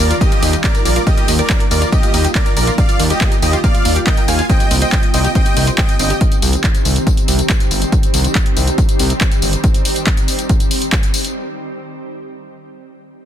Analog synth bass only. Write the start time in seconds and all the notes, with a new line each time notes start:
0.00 D#2
0.43 D#2
0.85 A#1
1.28 D#2
1.71 D#2
2.14 D#2
2.57 A#1
2.99 D#2
3.42 D#2
3.85 D#2
4.28 D#2
4.71 C2
5.14 C2
5.57 C2
6.00 G1
6.42 C2
6.85 C2
7.28 C2
7.71 G1
8.14 C2
8.57 C2
9.00 C2
9.42 G1